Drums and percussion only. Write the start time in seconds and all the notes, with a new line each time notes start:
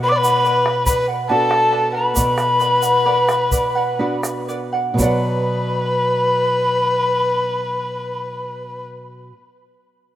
0.24 shaker
0.45 shaker
0.66 bombo rim
0.86 bombo low, shaker
1.30 bombo rim
1.51 bombo rim
1.72 bombo rim
2.16 bombo low, shaker
2.38 bombo rim, shaker
2.60 bombo rim, shaker
2.82 bombo rim, shaker
3.29 bombo rim, shaker
3.52 bombo low, shaker
4.23 bombo rim, shaker
4.49 shaker
4.99 bombo low, shaker